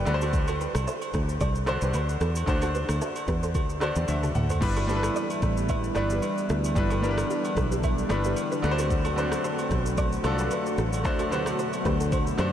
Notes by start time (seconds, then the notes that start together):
0.05 D2 D3 D4 F#4 B4 D5, cross-stick, shaker
0.14 C5
0.21 F#4 A4, high agogo, shaker
0.33 kick, shaker
0.48 F#4 A4, high agogo, shaker
0.61 G4 B4, shaker
0.75 C2, cross-stick, high agogo, shaker
0.87 A4 C5, low woodblock, shaker
1.02 high agogo, shaker
1.14 D2, kick, cross-stick, shaker
1.29 shaker
1.41 C2 A4 D5, kick, high agogo, shaker
1.55 shaker
1.66 D3 D4 F#4 A4 C5, cross-stick, high agogo, shaker
1.81 C2 G4 B4, shaker
1.94 D2 F#4 B4, high agogo, shaker
2.09 shaker
2.21 E2 F#4 A4, cross-stick, shaker
2.35 high agogo, shaker
2.46 D2 D3 D4 F#4 C5, kick, shaker
2.62 F#4 A4, high agogo, shaker
2.75 G4 B4, shaker
2.89 D2, cross-stick, high agogo, shaker
3.01 F#4 A4, low woodblock, shaker
3.16 high agogo, shaker
3.28 E2 G4 B4, kick, cross-stick, shaker
3.43 A4 C5, shaker
3.55 D2 F#4 A4, kick, high agogo, shaker
3.70 shaker
3.80 D3 D4 F#4 A4 C5 D5, cross-stick, high agogo, shaker
3.96 E2 G4 B4, shaker
4.08 D2 E5, high tom, high agogo, shaker
4.23 F#4 A4, mid tom, shaker
4.35 D2 F#5, mid tom, shaker
4.50 A4 C5, floor tom, high agogo, shaker
4.61 G1 D3 E3 G3 B3 D4 E4 B4, kick, crash, shaker
4.76 F#4 A4, high agogo, shaker
4.87 G3 D4 E4 G4 A4 B4, shaker
4.96 B4
5.03 cross-stick, high agogo, shaker
5.16 B4 D5, shaker
5.30 high agogo, shaker
5.42 A1, kick, cross-stick, shaker
5.57 shaker
5.69 B4 E5, kick, high agogo, shaker
5.84 shaker
5.95 G1 G3 D4 E4 B4 D5, cross-stick, high agogo, shaker
6.10 G4 B4, shaker
6.22 G4 B4, high agogo, shaker
6.38 shaker
6.49 D2 F#4 A4, cross-stick, shaker
6.64 high agogo, shaker
6.75 G1 G3 D4 E4 B4, kick, shaker
6.90 F#4 A4, high agogo, shaker
7.02 G3 D4 E4 G4 A#4 B4, shaker
7.11 B4
7.18 cross-stick, high agogo, shaker
7.30 E4 G4, shaker
7.45 high agogo, shaker
7.57 B1 F#4 A4, kick, cross-stick, shaker
7.72 G4 B4, shaker
7.83 B4 E5, kick, high agogo, shaker
7.98 shaker
8.09 G1 G3 D4 E4 B4 D5, cross-stick, high agogo, shaker
8.24 G4 B4, shaker
8.36 high agogo, shaker
8.52 G4 B4, shaker
8.62 D2 D3 F#3 A3 C4 D4 F#4 B4, cross-stick, shaker
8.71 C5
8.79 F#4 A4, high agogo, shaker
8.90 kick, shaker
9.05 F#4 A4, high agogo, shaker
9.16 D3 D4 F#4 G4 B4 C5, shaker
9.32 cross-stick, high agogo, shaker
9.44 A4 C5, shaker
9.59 high agogo, shaker
9.71 B1, kick, cross-stick, shaker
9.86 shaker
9.98 A4 D5, kick, high agogo, shaker
10.12 shaker
10.24 C2 D3 D4 F4 A4 C5, cross-stick, high agogo, shaker
10.32 F#4
10.39 G4 B4, shaker
10.51 F#4 B4, high agogo, shaker
10.66 shaker
10.78 A1 B2 F#4 A4, cross-stick, shaker
10.93 high agogo, shaker
11.04 D2 D3 D4 F#4 C5, kick, shaker
11.19 F#4 A4, high agogo, shaker
11.31 D3 D4 F#4 G4 B4 C5, shaker
11.46 cross-stick, high agogo, shaker
11.59 A4 C5, shaker
11.73 high agogo, shaker
11.85 D2 G4 B4, kick, cross-stick, shaker
12.00 F#4 A4, shaker
12.12 A4 C5, kick, high agogo, shaker
12.27 shaker
12.38 F#2 D3 D4 F#4 G4 B4 C5, cross-stick, high agogo, shaker